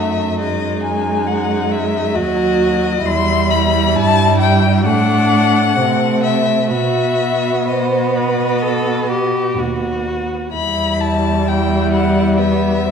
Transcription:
0.00 2.17 F#2 soft
0.00 0.41 A3 soft
0.00 0.37 D#4 soft
0.00 0.38 E5 medium
0.38 2.17 G#3 soft
0.38 2.16 D#4 soft
0.38 0.82 D#5 medium
0.83 1.29 G#5 medium
1.27 1.73 F#5 medium
1.71 2.17 E5 medium
2.14 3.04 D#2 medium
2.14 3.05 F#3 soft
2.14 3.04 F#4 soft
2.14 3.07 D#5 medium
3.05 3.96 E2 medium
3.05 4.87 G3 medium
3.05 4.82 E4 soft
3.05 3.52 C6 medium
3.51 3.97 B5 medium
3.95 4.87 G2 medium
3.95 4.39 A5 medium
4.40 4.84 G5 medium
4.85 5.78 A2 medium
4.85 5.77 A3 medium
4.85 5.79 D4 medium
4.85 6.21 F#5 medium
5.77 6.71 C3 soft
5.77 6.73 A3 soft
5.77 6.70 C4 soft
6.24 6.70 E5 medium
6.70 9.59 B2 soft
6.70 10.33 B3 soft
6.70 7.57 F#4 soft
6.70 7.70 E5 medium
7.68 8.17 C5 soft
7.68 10.06 D#5 soft
8.15 8.63 B4 soft
8.62 9.10 A4 medium
9.11 9.60 G4 soft
9.57 10.33 D#2 soft
9.57 10.54 F#4 soft
10.53 12.91 E2 soft
10.53 12.91 G3 soft
10.53 11.45 E4 soft
10.53 11.02 B5 medium
11.00 11.49 A5 medium
11.48 12.40 E4 soft
11.48 11.92 G5 medium
11.92 12.38 F#5 medium
12.39 12.87 B3 medium
12.39 12.91 E5 medium
12.85 12.91 C4 soft

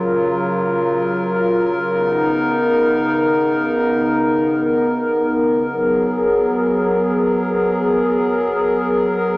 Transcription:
0.00 1.90 C#3 medium
0.00 1.90 F#3 medium
0.00 1.90 F4 medium
0.00 9.37 A#4 medium
1.93 5.65 C#3 medium
1.93 9.37 B3 medium
1.93 5.65 D#4 medium
5.68 9.37 F#3 medium
5.68 9.37 G#4 medium

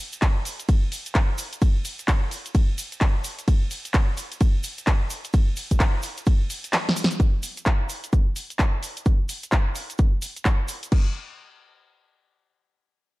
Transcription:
0.12 closed hi-hat medium
0.12 shaker medium
0.22 kick loud
0.22 clap loud
0.22 closed hi-hat soft
0.22 ride medium
0.22 shaker soft
0.45 open hi-hat loud
0.45 shaker medium
0.60 closed hi-hat medium
0.60 shaker medium
0.69 kick loud
0.69 closed hi-hat medium
0.69 ride medium
0.69 shaker soft
0.92 open hi-hat loud
0.92 shaker medium
1.06 closed hi-hat medium
1.06 shaker medium
1.15 kick loud
1.15 clap loud
1.15 closed hi-hat soft
1.15 ride medium
1.15 shaker soft
1.38 open hi-hat loud
1.38 shaker loud
1.53 closed hi-hat medium
1.53 shaker medium
1.62 kick loud
1.62 closed hi-hat medium
1.62 ride medium
1.62 shaker soft
1.85 open hi-hat loud
1.85 shaker medium
1.99 closed hi-hat medium
1.99 shaker medium
2.08 kick loud
2.08 clap loud
2.08 closed hi-hat medium
2.08 ride medium
2.08 shaker soft
2.31 open hi-hat loud
2.31 shaker medium
2.46 closed hi-hat medium
2.46 shaker medium
2.55 kick loud
2.55 closed hi-hat medium
2.55 ride medium
2.55 shaker soft
2.78 open hi-hat loud
2.78 shaker loud
2.92 closed hi-hat medium
2.92 shaker medium
3.01 kick loud
3.01 clap loud
3.01 closed hi-hat medium
3.01 ride medium
3.01 shaker soft
3.24 open hi-hat loud
3.24 shaker loud
3.39 closed hi-hat medium
3.39 shaker medium
3.48 kick loud
3.48 closed hi-hat medium
3.48 ride medium
3.48 shaker soft
3.71 open hi-hat loud
3.71 shaker medium
3.85 closed hi-hat medium
3.85 shaker medium
3.94 kick loud
3.94 clap loud
3.94 closed hi-hat medium
3.94 ride medium
3.94 shaker soft
4.17 open hi-hat loud
4.17 shaker medium
4.32 closed hi-hat medium
4.32 shaker soft
4.41 kick loud
4.41 closed hi-hat medium
4.41 ride medium
4.41 shaker soft
4.63 open hi-hat loud
4.63 shaker medium
4.78 closed hi-hat medium
4.78 shaker medium
4.87 kick loud
4.87 clap loud
4.87 closed hi-hat medium
4.87 ride medium
4.87 shaker soft
5.10 open hi-hat loud
5.10 shaker medium
5.24 closed hi-hat medium
5.24 shaker soft
5.33 kick loud
5.33 closed hi-hat medium
5.33 ride medium
5.33 shaker soft
5.56 open hi-hat loud
5.56 shaker medium
5.71 kick medium
5.71 closed hi-hat medium
5.71 shaker medium
5.80 kick loud
5.80 clap loud
5.80 closed hi-hat medium
5.80 ride medium
5.80 shaker soft
6.02 open hi-hat loud
6.02 shaker medium
6.17 closed hi-hat medium
6.17 shaker soft
6.26 kick loud
6.26 closed hi-hat medium
6.26 ride medium
6.26 shaker soft
6.50 open hi-hat loud
6.50 shaker loud
6.64 closed hi-hat medium
6.64 shaker soft
6.73 snare medium
6.73 clap loud
6.73 closed hi-hat medium
6.73 ride medium
6.73 shaker soft
6.89 snare medium
6.96 open hi-hat loud
6.96 shaker medium
7.04 snare loud
7.11 closed hi-hat medium
7.11 shaker soft
7.20 kick loud
7.20 closed hi-hat medium
7.20 shaker soft
7.43 open hi-hat loud
7.43 shaker medium
7.57 closed hi-hat medium
7.57 shaker medium
7.66 kick loud
7.66 clap loud
7.66 closed hi-hat medium
7.66 shaker soft
7.89 open hi-hat loud
7.89 shaker medium
8.04 closed hi-hat medium
8.04 shaker medium
8.13 kick loud
8.13 closed hi-hat medium
8.13 shaker soft
8.36 open hi-hat loud
8.36 shaker medium
8.50 closed hi-hat medium
8.50 shaker soft
8.59 kick loud
8.59 clap loud
8.59 closed hi-hat medium
8.59 shaker soft
8.83 open hi-hat loud
8.83 shaker medium
8.97 closed hi-hat medium
8.97 shaker soft
9.06 kick loud
9.06 closed hi-hat medium
9.06 shaker soft
9.29 open hi-hat loud
9.29 shaker loud
9.43 closed hi-hat medium
9.43 shaker medium
9.52 kick loud
9.52 clap loud
9.52 closed hi-hat medium
9.52 shaker soft
9.75 open hi-hat loud
9.75 shaker medium
9.90 closed hi-hat medium
9.90 shaker medium
9.98 kick loud
9.98 closed hi-hat medium
9.98 shaker soft
10.22 open hi-hat loud
10.22 shaker loud
10.36 closed hi-hat medium
10.36 shaker medium
10.45 kick loud
10.45 clap loud
10.45 closed hi-hat medium
10.45 shaker soft
10.68 open hi-hat loud
10.68 shaker loud
10.83 closed hi-hat medium
10.83 shaker medium
10.92 kick loud
10.92 crash medium

